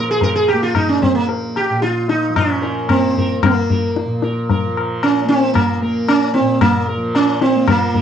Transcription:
Already playing: A#2 F3 A#3
0.11 G#4
0.21 A#4, tabla tin, tabla ge
0.35 G#4
0.48 G4, tabla na
0.54 A#3
0.63 F4
0.75 D#4, tabla na, tabla ge
0.89 C#4
1.02 C4, tabla ge
1.14 A#3
1.29 tabla tin
1.56 G4, tabla na
1.70 A#2
1.82 F4, tabla te
2.09 D#4, tabla te
2.30 F3
2.36 D4, tabla na, tabla ge
2.51 C#4
2.62 A#4, tabla te
2.89 A#3 C4, tabla na, tabla ge
3.17 A#4, tabla ge
3.43 A#3, tabla na, tabla ge
3.70 A#4, tabla ge
3.96 tabla te
4.05 A#2
4.22 A#4, tabla te
4.50 A#4, tabla tin, tabla ge
4.66 F3
4.77 tabla na
5.03 C#4, tabla na
5.24 A#3
5.29 C4, tabla te
5.54 A#3, tabla na, tabla ge
5.82 A#3 A#4
6.08 C#4, tabla na
6.34 C4, tabla te
6.40 A#2
6.61 A#3, tabla na, tabla ge
6.89 A#4
6.97 F3
7.15 C#4, tabla na
7.41 C4, tabla te
7.55 A#3
7.67 F3 A#3, tabla na, tabla ge
7.94 A#4, tabla ge

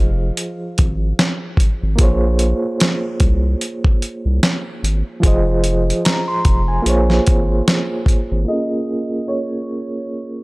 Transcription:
Already playing: F1 F3 F4 G#4 C5 D#5 F5
0.37 closed hi-hat
0.78 G#1, kick, closed hi-hat
1.19 snare, closed hi-hat
1.57 kick, closed hi-hat
1.83 G#1
1.96 A#1 A#3 F4 G#4, kick, closed hi-hat
2.01 C5 C#5
2.39 closed hi-hat
2.80 snare, closed hi-hat
3.20 C2, kick, closed hi-hat
3.61 closed hi-hat
3.85 kick
4.02 closed hi-hat
4.25 C2
4.43 snare, closed hi-hat
4.83 G#1, closed hi-hat
5.20 F1 F3 F4 G#4, kick, closed hi-hat
5.26 C5 D#5
5.64 closed hi-hat
5.90 closed hi-hat
6.05 A#5, snare, closed hi-hat
6.28 C6
6.45 F1, kick, closed hi-hat
6.68 G#5
6.82 A#1 A#3 F4 G#4, closed hi-hat
6.87 C5 C#5
7.10 snare
7.27 G#1, kick, closed hi-hat
7.68 snare, closed hi-hat
8.06 kick, closed hi-hat
8.31 G#1
8.45 A#3 F4 G#4 D#5
8.50 C#4 A#4
9.28 C#5

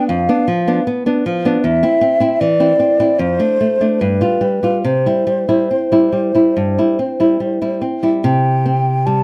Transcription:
0.08 F2 F5
0.29 B3 D4
0.48 F3
0.67 B3 D4
0.87 B3
1.06 B3 D4
1.26 F3
1.45 B3 D4
1.63 E2 E5
1.83 C4 E4
2.01 C4
2.20 C4 E4
2.40 E3 D5
2.60 C4 E4
2.80 C4
3.00 C4 E4
3.19 F2 C5
3.39 A3 D4
3.61 A3
3.81 A3 D4
4.00 G2 B4
4.21 G3 F4
4.41 G3
4.63 G3 F4
4.84 C3 C5
5.06 G3 E4
5.27 G3
5.49 G3 E4
5.71 C4
5.92 G3 E4
6.12 G3
6.35 G3 E4
6.57 G2
6.78 G3 E4
6.99 C4
7.20 G3 E4
7.40 G3
7.62 G3 E4
7.81 C4
8.03 G3 E4
8.24 C3 G5
8.66 C4
9.06 G3 A5

